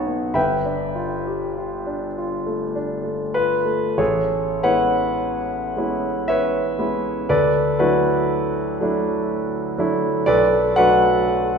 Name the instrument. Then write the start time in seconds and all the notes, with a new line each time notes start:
grand piano
Already playing: B1 B3 C#4 D#4 C#5 D#5 F#5 G#5 A5 B5 C#6 D#6
0.07 B3
0.34 G1 B4 E5 G5 B5
0.65 D4
0.95 F4
1.27 G4
1.58 F4
1.86 D4
2.18 F4
2.47 A3
2.75 D4
3.03 A3
3.34 F4 B4
3.65 A3
3.98 A1 G#4 A4 C#5
4.63 G#3 B3 C#4 E4 B4 C#5 F#5
5.77 G#3 B3 C#4 E4
6.28 B4 C#5 E5
6.79 G#3 B3 C#4 E4
7.29 D2 A4 B4 D5
7.79 F#3 A3 D4 E4 F#4 B4
8.80 F#3 A3 D4 E4
9.78 F#3 A3 D4 E4
10.26 B1 A4 B4 D5
10.76 F#3 A3 D4 F#4 B4 D5 F#5